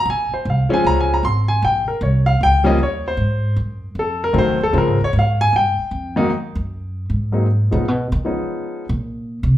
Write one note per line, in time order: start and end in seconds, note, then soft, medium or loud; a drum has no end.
0.05 0.29 A#1 loud
0.10 0.33 G#5 medium
0.31 0.46 C5 medium
0.31 muted upright bass stroke soft
0.45 0.69 C2 medium
0.50 0.72 F5 medium
0.69 1.20 F3 medium
0.69 1.20 G#3 medium
0.69 1.20 C4 medium
0.69 1.20 C#4 medium
0.69 muted upright bass stroke soft
0.74 0.85 G#5 medium
0.84 1.22 C#2 medium
0.84 0.98 A#5 loud
1.00 1.12 G#5 medium
1.14 1.25 A#5 medium
1.23 1.61 G#1 medium
1.23 1.49 C6 loud
1.48 1.62 G#5 medium
1.62 1.86 A#1 medium
1.62 1.88 G5 medium
1.88 2.01 A#4 medium
1.88 muted upright bass stroke soft
2.01 2.39 C2 loud
2.01 2.27 C#5 medium
2.26 2.40 F5 medium
2.41 2.78 C#2 medium
2.41 2.66 G5 loud
2.64 2.77 F3 medium
2.64 2.77 G3 medium
2.64 2.77 A#3 medium
2.64 2.78 C#4 medium
2.64 2.79 D#5 medium
2.78 3.17 D#2 medium
2.83 3.06 C#5 medium
3.08 3.55 C5 medium
3.17 3.56 G#2 medium
3.56 3.94 F#2 medium
3.95 4.33 F2 medium
3.99 4.22 A4 medium
4.24 4.36 A#4 loud
4.33 4.49 A2 medium
4.33 4.57 D#3 medium
4.33 4.57 F#3 medium
4.33 4.57 A3 medium
4.33 4.57 C4 medium
4.38 4.61 C5 medium
4.47 4.60 F2 medium
4.61 4.73 D#2 medium
4.61 4.75 A4 medium
4.73 4.87 A#2 medium
4.73 4.96 C#3 medium
4.73 4.97 F3 medium
4.73 4.97 G#3 medium
4.73 4.97 C4 medium
4.78 5.01 A#4 medium
4.87 5.00 G#2 medium
5.01 5.13 F2 medium
5.01 5.15 C#5 medium
5.13 5.51 G#2 medium
5.19 5.41 F5 medium
5.41 5.53 G#5 loud
5.53 5.76 G2 medium
5.53 6.21 G5 medium
5.78 muted upright bass stroke soft
5.91 6.29 F2 medium
6.16 6.29 G#2 medium
6.16 6.29 D#3 medium
6.16 6.29 F#3 medium
6.16 6.29 A#3 medium
6.16 6.29 D#4 medium
6.55 7.04 F#2 medium
7.10 7.69 G#2 medium
7.32 7.45 F#3 medium
7.32 7.45 G#3 soft
7.32 7.45 A#3 soft
7.32 7.46 C4 soft
7.32 7.46 D#4 medium
7.71 7.88 A#2 medium
7.71 7.84 F3 medium
7.71 7.84 G#3 medium
7.71 7.85 B3 medium
7.71 7.85 C#4 soft
7.71 7.85 D#4 medium
7.88 8.12 B2 medium
8.12 8.25 D#3 medium
8.24 8.84 F3 medium
8.24 8.84 G#3 soft
8.24 8.84 B3 soft
8.24 8.84 C#4 soft
8.24 8.85 D#4 medium
8.89 9.38 A#2 medium
9.43 9.58 C3 medium